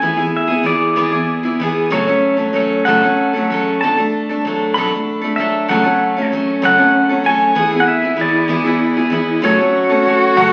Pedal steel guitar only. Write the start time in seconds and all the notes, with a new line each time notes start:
Already playing: G#5
0.37 E5
0.66 D5
1.92 C#5
2.85 F#5
3.81 A5
4.74 B5
5.36 E5
5.69 F#5
6.65 F#5
7.26 G#5
7.80 F#5
7.88 E5
8.21 D5
9.45 C#5
10.37 F#5